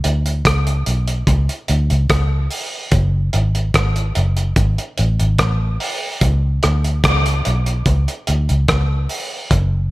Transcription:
0.04 fingered electric bass D2, closed hi-hat
0.26 closed hi-hat
0.45 fingered electric bass C#2, kick, cross-stick, closed hi-hat
0.67 closed hi-hat
0.86 fingered electric bass B1, closed hi-hat
1.08 closed hi-hat
1.27 fingered electric bass C#2, kick, closed hi-hat
1.49 closed hi-hat
1.68 fingered electric bass D2, closed hi-hat
1.90 fingered electric bass C#2, closed hi-hat
2.10 fingered electric bass C#2, kick, cross-stick, closed hi-hat
2.51 open hi-hat
2.92 fingered electric bass F#1, kick, closed hi-hat
3.33 fingered electric bass G#1, closed hi-hat
3.55 closed hi-hat
3.74 fingered electric bass G#1, kick, cross-stick, closed hi-hat
3.96 closed hi-hat
4.15 fingered electric bass F#1, closed hi-hat
4.37 closed hi-hat
4.56 fingered electric bass G#1, kick, closed hi-hat
4.78 closed hi-hat
4.98 fingered electric bass A1, closed hi-hat
5.20 fingered electric bass G#1, closed hi-hat
5.38 fingered electric bass A1, kick, cross-stick, closed hi-hat
5.80 open hi-hat
6.21 fingered electric bass C#2, kick, closed hi-hat
6.63 fingered electric bass D2, cross-stick, closed hi-hat
6.84 closed hi-hat
7.04 fingered electric bass C#2, kick, cross-stick, closed hi-hat
7.26 closed hi-hat
7.45 fingered electric bass B1, closed hi-hat
7.66 closed hi-hat
7.86 fingered electric bass C#2, kick, closed hi-hat
8.08 closed hi-hat
8.27 fingered electric bass D2, closed hi-hat
8.49 fingered electric bass C#2, closed hi-hat
8.68 fingered electric bass C#2, kick, cross-stick, closed hi-hat
9.09 open hi-hat
9.51 fingered electric bass F#1, kick, closed hi-hat

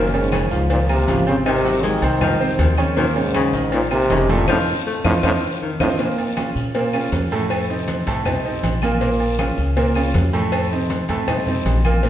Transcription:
Already playing: upright bass F#1, trombone F#2, baritone saxophone D#3, grand piano A#3 A#4
0.13 trombone G#2, grand piano C#3 C#4 C#5, high conga, low agogo, maracas
0.32 baritone saxophone C#3, cowbell, high conga, low agogo, short guiro, claves, maracas
0.51 upright bass C#2, trombone G#2, grand piano F3 F4 F5, high conga, short guiro, maracas
0.70 trombone A#2, baritone saxophone D#3, cowbell, high conga, low agogo, long guiro, maracas
0.89 trombone C3, grand piano A#3 A#4 A#5, high conga, low agogo, claves, maracas
1.07 upright bass G#1, baritone saxophone C#3, grand piano F3 F4 F5, cowbell, high conga, low timbale, short guiro, maracas
1.27 grand piano C3 C4 C5, trombone C#3, low agogo, short guiro, maracas
1.45 trombone C3, grand piano D#3 D#4 D#5, baritone saxophone D#3, cowbell, low agogo, long guiro, claves, maracas
1.64 grand piano F#3 F#4 F#5, high conga, maracas
1.83 trombone D#3, baritone saxophone G#3, cowbell, high conga, low agogo, short guiro, maracas
2.02 upright bass C2, grand piano C3 C4 C5, cowbell, high conga, low agogo, short guiro, maracas
2.21 grand piano D#3 D#4 D#5, baritone saxophone F3, cowbell, high conga, low conga, low agogo, long guiro, claves, maracas
2.40 grand piano C3 C4 C5, high conga, maracas
2.58 upright bass D#2, baritone saxophone D#3, cowbell, high conga, low timbale, low agogo, short guiro, maracas
2.77 grand piano C#3 C#4 C#5, high conga, low agogo, short guiro, claves, maracas
2.96 trombone F#2, grand piano A#2 A#3 A#4, baritone saxophone D#3, cowbell, high conga, long guiro, maracas
3.15 trombone G#2, grand piano C#3 C#4 C#5, high conga, low agogo, maracas
3.34 baritone saxophone C#3, cowbell, high conga, low agogo, short guiro, claves, maracas
3.53 upright bass A#1, grand piano D#3 D#4 D#5, high conga, short guiro, maracas
3.72 trombone A#2, baritone saxophone D#3, cowbell, high conga, low agogo, long guiro, maracas
3.91 trombone C3, grand piano A#3 A#4 A#5, high conga, low agogo, claves, maracas
4.10 upright bass F1, baritone saxophone C#3, grand piano D#3 D#4 D#5, cowbell, high conga, low timbale, short guiro, maracas
4.29 grand piano A2 A3 A4, trombone A#2, high conga, low agogo, short guiro, maracas
4.47 upright bass F2, trombone A2, baritone saxophone F3, grand piano C4 D#4 F4, cowbell, high conga, high timbale, long guiro, claves, maracas
4.86 baritone saxophone A3
5.04 upright bass F2, trombone A2, grand piano C4 D#4 F4, cowbell, high conga, high timbale, long guiro, claves, maracas
5.23 upright bass F2, trombone A2, baritone saxophone F3, grand piano C4 D#4 F4, cowbell, high conga, high timbale, long guiro, claves, maracas
5.62 baritone saxophone D#3
5.80 upright bass F2, trombone A2, grand piano C4 D#4 F4, cowbell, high conga, high timbale, long guiro, claves, maracas
5.99 grand piano A#2 A#3 A#4, cowbell, high conga, long guiro, maracas
6.18 high conga, low agogo, maracas
6.37 grand piano C#3 C#4 F4, cowbell, high conga, low agogo, short guiro, claves, maracas
6.55 upright bass A#2, high conga, short guiro, maracas
6.75 grand piano A#2 A#3 A#4, cowbell, high conga, low agogo, long guiro, maracas
6.93 grand piano C#3 C#4 F4, high conga, low agogo, claves, maracas
7.12 upright bass F2, cowbell, high conga, low timbale, short guiro, maracas
7.31 grand piano A2 A3 A4, low agogo, short guiro, maracas
7.50 cowbell, high conga, low agogo, long guiro, claves, maracas
7.69 grand piano C3 C4 D#4, high conga, maracas
7.88 cowbell, high conga, low agogo, short guiro, maracas
8.07 upright bass C2, grand piano A2 A3 A4, cowbell, high conga, low agogo, short guiro, maracas
8.25 grand piano C3 C4 D#4, cowbell, high conga, low conga, low agogo, long guiro, claves, maracas
8.45 grand piano C3 C4 D#4, high conga, maracas
8.63 upright bass A#1, cowbell, high conga, low timbale, low agogo, short guiro, maracas
8.82 grand piano A#2 A#3 A#4, high conga, low agogo, short guiro, claves, maracas
9.01 grand piano A#2 A#3 A#4, cowbell, high conga, long guiro, maracas
9.20 high conga, low agogo, maracas
9.39 grand piano C#3 C#4 F4, cowbell, high conga, low agogo, short guiro, claves, maracas
9.58 upright bass C#2, high conga, short guiro, maracas
9.77 grand piano A#2 A#3 A#4, cowbell, high conga, low agogo, long guiro, maracas
9.95 grand piano C#3 C#4 F4, high conga, low agogo, claves, maracas
10.14 upright bass F2, cowbell, high conga, low timbale, short guiro, maracas
10.33 grand piano A2 A3 A4, low agogo, short guiro, maracas
10.52 cowbell, high conga, low agogo, long guiro, claves, maracas
10.71 grand piano C3 C4 D#4, high conga, maracas
10.90 cowbell, high conga, low agogo, short guiro, maracas
11.09 upright bass F2, grand piano A2 A3 A4, cowbell, high conga, low agogo, short guiro, maracas
11.28 grand piano C3 C4 D#4, cowbell, high conga, low conga, low agogo, long guiro, claves, maracas
11.47 grand piano C3 C4 D#4, high conga, low conga, maracas
11.65 upright bass A#1, cowbell, high conga, low timbale, low agogo, short guiro, maracas
11.85 grand piano A#2 A#3 A#4, high conga, low agogo, short guiro, claves, maracas
12.03 grand piano A#2 A#3 A#4, cowbell, long guiro, maracas

